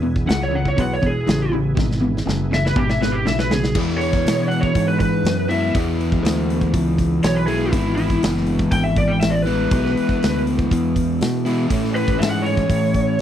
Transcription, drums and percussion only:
0.16 kick
0.29 snare, open hi-hat
0.65 kick
0.78 kick, open hi-hat
1.03 kick
1.28 snare, open hi-hat
1.77 kick, snare
1.91 snare
2.17 snare
2.29 snare
2.53 snare
2.66 snare
2.76 kick
2.90 snare
3.02 snare
3.27 snare
3.39 snare
3.51 snare
3.64 snare
3.75 kick, crash
3.90 snare
4.01 open hi-hat
4.13 kick
4.27 snare, open hi-hat
4.51 open hi-hat
4.63 kick
4.75 kick, open hi-hat
5.00 kick, open hi-hat
5.25 snare, open hi-hat
5.51 open hi-hat
5.75 kick, open hi-hat
6.01 open hi-hat
6.12 kick
6.25 snare, open hi-hat
6.50 open hi-hat
6.61 kick
6.74 kick, open hi-hat
6.98 kick, open hi-hat
7.23 snare, open hi-hat
7.48 open hi-hat
7.73 kick, open hi-hat
7.98 open hi-hat
8.10 kick
8.23 snare, open hi-hat
8.37 snare
8.46 open hi-hat
8.59 kick
8.71 kick, open hi-hat
8.96 kick, open hi-hat
9.21 snare, open hi-hat
9.47 open hi-hat
9.71 kick, open hi-hat
9.86 snare
9.97 open hi-hat
10.09 kick
10.23 snare, open hi-hat
10.47 open hi-hat
10.59 kick
10.71 kick, open hi-hat
10.96 kick, open hi-hat
11.21 snare, open hi-hat
11.46 open hi-hat
11.70 kick, open hi-hat
11.84 snare
11.96 open hi-hat
12.08 kick
12.22 snare, open hi-hat
12.46 open hi-hat
12.57 kick
12.70 kick, open hi-hat
12.94 kick, open hi-hat

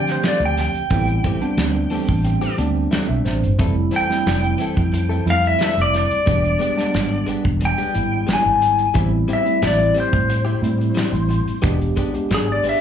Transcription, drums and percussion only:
0.07 snare, closed hi-hat
0.24 snare, closed hi-hat
0.40 closed hi-hat
0.57 snare, closed hi-hat
0.74 closed hi-hat
0.90 kick, closed hi-hat
1.07 closed hi-hat
1.24 kick, closed hi-hat
1.41 closed hi-hat
1.57 snare, closed hi-hat
1.91 open hi-hat
2.09 kick
2.25 closed hi-hat
2.42 closed hi-hat
2.58 closed hi-hat
2.92 snare, closed hi-hat
3.26 snare, closed hi-hat
3.43 closed hi-hat
3.59 kick, closed hi-hat
3.93 closed hi-hat
4.11 snare, closed hi-hat
4.27 snare, closed hi-hat
4.44 closed hi-hat
4.60 closed hi-hat
4.77 kick, closed hi-hat
4.94 closed hi-hat
5.27 closed hi-hat
5.44 closed hi-hat
5.61 snare, closed hi-hat
5.78 closed hi-hat
5.94 snare, closed hi-hat
6.11 closed hi-hat
6.27 kick, closed hi-hat
6.44 closed hi-hat
6.61 closed hi-hat
6.78 snare, closed hi-hat
6.94 snare, closed hi-hat
7.28 closed hi-hat
7.45 kick
7.61 closed hi-hat
7.78 closed hi-hat
7.95 closed hi-hat
8.28 snare, closed hi-hat
8.62 closed hi-hat
8.79 closed hi-hat
8.95 kick, closed hi-hat
9.29 closed hi-hat
9.46 closed hi-hat
9.62 snare, closed hi-hat
9.80 closed hi-hat
9.96 closed hi-hat
10.13 kick, closed hi-hat
10.30 closed hi-hat
10.64 closed hi-hat
10.81 closed hi-hat
10.97 snare, closed hi-hat
11.14 closed hi-hat
11.31 closed hi-hat
11.48 closed hi-hat
11.64 kick, closed hi-hat
11.81 closed hi-hat
11.97 kick, closed hi-hat
12.15 closed hi-hat
12.31 snare, closed hi-hat
12.64 open hi-hat

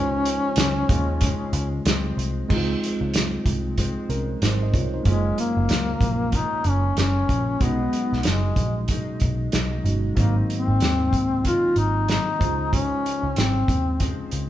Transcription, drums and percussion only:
0.25 closed hi-hat
0.56 snare, closed hi-hat
0.89 kick, closed hi-hat
1.21 kick, closed hi-hat
1.53 closed hi-hat
1.85 snare, closed hi-hat
2.19 closed hi-hat
2.50 kick, crash
2.84 closed hi-hat
3.14 snare, closed hi-hat
3.46 kick, closed hi-hat
3.78 kick, closed hi-hat
4.10 closed hi-hat
4.42 snare, closed hi-hat
4.74 kick, closed hi-hat
5.05 kick, closed hi-hat
5.38 closed hi-hat
5.69 snare, closed hi-hat
6.01 kick, closed hi-hat
6.32 kick, closed hi-hat
6.64 closed hi-hat
6.97 snare, closed hi-hat
7.29 kick, closed hi-hat
7.61 kick, closed hi-hat
7.93 closed hi-hat
8.13 snare
8.23 snare, closed hi-hat
8.56 kick, closed hi-hat
8.88 kick, closed hi-hat
9.20 kick, closed hi-hat
9.52 snare, closed hi-hat
9.86 closed hi-hat
10.17 kick, closed hi-hat
10.50 closed hi-hat
10.80 snare, closed hi-hat
11.13 kick, closed hi-hat
11.45 kick, closed hi-hat
11.76 closed hi-hat
12.08 snare, closed hi-hat
12.41 kick, closed hi-hat
12.73 kick, closed hi-hat
13.06 closed hi-hat
13.36 snare, closed hi-hat
13.68 kick, closed hi-hat
14.00 kick, closed hi-hat
14.31 closed hi-hat

